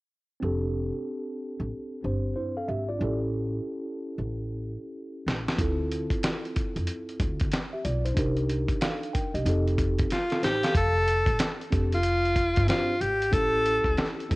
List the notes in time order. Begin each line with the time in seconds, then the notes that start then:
0.40 F1 C4 D4 G4
0.44 A4
1.60 A1
2.03 G1 C4 D4 G4 C5
2.36 E4 C5
2.57 A4 F5
2.68 G#1 G4 E5
2.88 F4 D5
2.99 A1 C#4 E4 G4
3.03 A4
4.18 A1
5.26 A#1, snare
5.48 snare
5.57 D2 C4 E4 F4, kick, closed hi-hat
5.61 A4
5.92 closed hi-hat
6.10 kick, closed hi-hat
6.23 snare, closed hi-hat
6.45 closed hi-hat
6.56 kick, closed hi-hat
6.76 F2, closed hi-hat
6.87 closed hi-hat
7.09 closed hi-hat
7.20 D2, kick, closed hi-hat
7.40 kick, closed hi-hat
7.52 snare, closed hi-hat
7.73 G4 E5
7.85 B1 F4 D5, closed hi-hat
8.05 E4 C5, closed hi-hat
8.14 C2 D4 D#4 G4, kick, closed hi-hat
8.19 A#4
8.37 closed hi-hat
8.49 closed hi-hat
8.68 kick, closed hi-hat
8.81 A4 F5, snare, closed hi-hat
9.03 closed hi-hat
9.13 A#4 G5, kick, closed hi-hat
9.34 C2 G4 D#5, closed hi-hat
9.44 F1 C4 D#4 G4, closed hi-hat
9.49 A4
9.68 closed hi-hat
9.78 kick, closed hi-hat
9.99 kick, closed hi-hat
10.10 F4, snare, closed hi-hat
10.30 C4 A4, snare, closed hi-hat
10.43 A1 D#4 G4 C5, snare, closed hi-hat
10.63 A4 F5, snare, closed hi-hat
10.75 F1 A4, kick, closed hi-hat
11.08 closed hi-hat
11.26 A1, kick, closed hi-hat
11.39 snare, closed hi-hat
11.61 closed hi-hat
11.70 F1 C4 D4 G4 A4, kick, closed hi-hat
11.92 F4, closed hi-hat
12.03 closed hi-hat
12.25 closed hi-hat
12.36 kick, closed hi-hat
12.56 G1, kick, closed hi-hat
12.67 C4 D4 F4 G4 C5, snare, closed hi-hat
13.01 G#1 G4, closed hi-hat
13.22 closed hi-hat
13.31 A1 C#4 E4 G4 A4, kick, closed hi-hat
13.66 closed hi-hat
13.84 C#2, kick, closed hi-hat
13.97 snare, closed hi-hat
14.20 closed hi-hat
14.29 C#2 C4 E4 G4 A4, kick, closed hi-hat